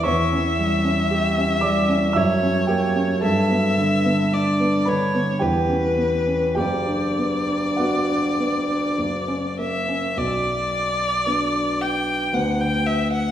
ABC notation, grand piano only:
X:1
M:3/4
L:1/16
Q:1/4=55
K:Bm
V:1 name="Grand piano"
[cc']6 [dd']2 [ee']2 [Gg]2 | [Aa]6 [Bb]2 [Gg]4 | [Gg]4 [Ff]6 z2 | z12 |]
V:2 name="Grand piano"
E,, C G, C G C G, C F,, C ^A, C | G,, B, D, B, D B, D, B, E,, C B, C | F,,, D B, D B, D B, D F,,, C ^A, C | B,,,4 [B,DB]4 [D,,B,DB]4 |]